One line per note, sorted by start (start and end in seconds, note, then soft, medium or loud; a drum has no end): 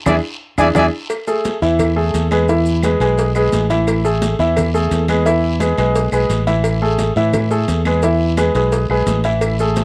0.06 0.19 E2 medium
0.06 0.17 D4 loud
0.06 0.17 E4 loud
0.06 0.17 G#4 medium
0.06 0.15 D5 medium
0.06 0.15 E5 medium
0.06 0.15 G#5 medium
0.06 low bongo medium
0.06 low conga medium
0.06 long guiro loud
0.06 claves loud
0.06 maracas medium
0.58 0.71 E2 medium
0.58 0.69 D4 medium
0.58 0.69 E4 medium
0.58 0.69 G#4 medium
0.58 0.67 D5 medium
0.58 0.67 E5 medium
0.58 0.67 G#5 medium
0.58 low bongo medium
0.58 low conga loud
0.58 long guiro loud
0.58 claves loud
0.58 maracas loud
0.75 0.88 E2 medium
0.75 0.86 D4 medium
0.75 0.86 E4 medium
0.75 0.86 G#4 medium
0.75 0.84 D5 loud
0.75 0.85 E5 loud
0.75 0.84 G#5 medium
0.75 low bongo loud
0.75 low conga loud
0.75 long guiro loud
0.75 claves medium
0.75 maracas medium
1.10 cowbell loud
1.10 high conga soft
1.10 claves medium
1.10 maracas medium
1.27 1.56 A3 medium
1.27 1.56 G#4 medium
1.27 1.56 A4 medium
1.27 high conga soft
1.27 maracas medium
1.45 cowbell medium
1.45 high conga loud
1.45 short guiro medium
1.45 maracas medium
1.62 2.10 E2 loud
1.62 1.90 E3 medium
1.62 1.91 E4 medium
1.62 1.91 E5 medium
1.62 high conga soft
1.62 short guiro medium
1.62 maracas soft
1.79 cowbell loud
1.79 high conga soft
1.79 low conga medium
1.79 long guiro medium
1.79 claves medium
1.79 maracas medium
1.96 2.25 A3 medium
1.96 2.25 G#4 medium
1.96 2.25 A4 medium
1.96 high conga soft
2.14 2.95 E2 medium
2.14 cowbell medium
2.14 high conga medium
2.14 short guiro medium
2.14 maracas medium
2.31 2.46 G#3 medium
2.31 2.46 G#4 medium
2.31 2.46 B4 medium
2.31 cowbell medium
2.31 high conga medium
2.31 short guiro medium
2.31 claves medium
2.31 maracas soft
2.48 2.77 E3 medium
2.48 2.77 E4 medium
2.48 2.78 E5 medium
2.48 cowbell loud
2.48 long guiro medium
2.48 maracas medium
2.66 high conga soft
2.66 maracas medium
2.83 2.98 G#3 medium
2.83 2.98 G#4 medium
2.83 2.98 B4 medium
2.83 cowbell medium
2.83 high conga loud
2.83 short guiro medium
2.83 claves medium
2.83 maracas medium
3.00 3.49 B1 medium
3.00 3.29 G#3 medium
3.00 3.29 G#4 medium
3.00 3.30 B4 medium
3.00 cowbell medium
3.00 high conga soft
3.00 short guiro medium
3.00 maracas soft
3.18 cowbell loud
3.18 high conga soft
3.18 long guiro medium
3.18 maracas medium
3.35 3.64 G#3 medium
3.35 3.64 G#4 medium
3.35 3.64 B4 medium
3.35 high conga soft
3.35 claves medium
3.35 maracas medium
3.52 4.34 A1 medium
3.52 cowbell medium
3.52 high conga medium
3.52 short guiro medium
3.52 maracas medium
3.70 3.98 E3 medium
3.70 3.98 E4 medium
3.70 3.99 E5 medium
3.70 cowbell medium
3.70 high conga medium
3.70 short guiro medium
3.70 maracas soft
3.87 cowbell loud
3.87 high conga soft
3.87 long guiro medium
3.87 claves medium
3.87 maracas medium
4.04 4.33 A3 medium
4.04 4.33 G#4 medium
4.04 4.33 A4 medium
4.04 high conga soft
4.04 maracas medium
4.22 cowbell medium
4.22 high conga loud
4.22 short guiro medium
4.22 maracas medium
4.39 4.87 E2 loud
4.39 4.68 E3 medium
4.39 4.68 E4 medium
4.39 4.68 E5 medium
4.39 high conga soft
4.39 short guiro medium
4.39 maracas soft
4.56 cowbell loud
4.56 high conga soft
4.56 low conga medium
4.56 long guiro medium
4.56 claves medium
4.56 maracas medium
4.74 5.02 A3 medium
4.74 5.03 G#4 medium
4.74 5.03 A4 medium
4.74 maracas medium
4.91 5.72 E2 medium
4.91 cowbell medium
4.91 high conga medium
4.91 short guiro medium
4.91 maracas medium
5.08 5.23 G#3 medium
5.08 5.23 G#4 medium
5.08 5.23 B4 medium
5.08 cowbell medium
5.08 high conga medium
5.08 short guiro medium
5.08 claves medium
5.08 maracas soft
5.25 5.54 E3 medium
5.25 5.54 E4 medium
5.25 5.54 E5 medium
5.25 cowbell loud
5.25 high conga soft
5.25 long guiro medium
5.25 maracas medium
5.43 high conga soft
5.60 5.74 G#3 medium
5.60 5.75 G#4 medium
5.60 5.75 B4 medium
5.60 cowbell medium
5.60 high conga medium
5.60 short guiro medium
5.60 claves medium
5.60 maracas medium
5.78 6.10 B1 medium
5.78 6.06 G#3 medium
5.78 6.07 G#4 medium
5.78 6.07 B4 medium
5.78 cowbell medium
5.78 high conga soft
5.78 short guiro medium
5.78 maracas soft
5.95 cowbell loud
5.95 high conga soft
5.95 long guiro medium
5.95 maracas medium
6.12 6.28 B1 medium
6.12 6.41 G#3 medium
6.12 6.41 G#4 medium
6.12 6.41 B4 medium
6.12 high conga soft
6.12 claves medium
6.12 maracas medium
6.29 7.10 A1 medium
6.29 cowbell medium
6.29 high conga medium
6.29 short guiro medium
6.29 maracas medium
6.47 6.75 E3 medium
6.47 6.75 E4 medium
6.47 6.76 E5 medium
6.47 cowbell medium
6.47 high conga medium
6.47 short guiro medium
6.47 maracas soft
6.64 cowbell loud
6.64 long guiro medium
6.64 claves medium
6.64 maracas medium
6.82 7.10 A3 medium
6.82 7.10 G#4 medium
6.82 7.10 A4 medium
6.82 high conga soft
6.99 cowbell medium
6.99 high conga loud
6.99 short guiro medium
6.99 maracas medium
7.16 7.65 A2 loud
7.16 7.45 E3 medium
7.16 7.45 E4 medium
7.16 7.45 E5 medium
7.16 short guiro medium
7.16 maracas soft
7.33 cowbell loud
7.33 high conga soft
7.33 low conga medium
7.33 long guiro medium
7.33 claves medium
7.33 maracas medium
7.51 7.79 A3 medium
7.51 7.79 G#4 medium
7.51 7.80 A4 medium
7.51 high conga soft
7.51 maracas medium
7.68 8.49 E2 medium
7.68 cowbell medium
7.68 high conga medium
7.68 short guiro medium
7.68 maracas medium
7.85 8.00 G#3 medium
7.85 8.00 G#4 medium
7.85 8.01 B4 medium
7.85 cowbell medium
7.85 high conga medium
7.85 short guiro medium
7.85 claves medium
7.85 maracas soft
8.02 8.32 E3 medium
8.02 8.32 E4 medium
8.02 8.32 E5 medium
8.02 cowbell loud
8.02 high conga soft
8.02 long guiro medium
8.02 maracas medium
8.20 high conga soft
8.37 8.52 G#3 medium
8.37 8.52 G#4 medium
8.37 8.52 B4 medium
8.37 cowbell medium
8.37 high conga medium
8.37 short guiro medium
8.37 claves medium
8.37 maracas medium
8.55 8.87 B1 medium
8.55 8.84 G#3 medium
8.55 8.84 G#4 medium
8.55 8.84 B4 medium
8.55 cowbell medium
8.55 high conga soft
8.55 short guiro medium
8.55 maracas soft
8.72 cowbell loud
8.72 high conga soft
8.72 long guiro medium
8.72 maracas medium
8.89 9.06 B1 medium
8.89 9.18 G#3 medium
8.89 9.19 G#4 medium
8.89 9.19 B4 medium
8.89 high conga soft
8.89 claves medium
9.06 9.84 A1 medium
9.06 cowbell medium
9.06 high conga medium
9.06 short guiro medium
9.06 maracas medium
9.24 9.53 E3 medium
9.24 9.53 E4 medium
9.24 9.53 E5 medium
9.24 cowbell medium
9.24 short guiro medium
9.24 maracas soft
9.41 cowbell loud
9.41 high conga soft
9.41 long guiro medium
9.41 claves medium
9.41 maracas medium
9.59 9.84 A3 medium
9.59 9.84 G#4 medium
9.59 9.84 A4 medium
9.59 high conga soft
9.59 maracas medium
9.76 cowbell medium
9.76 high conga loud
9.76 short guiro medium
9.76 maracas medium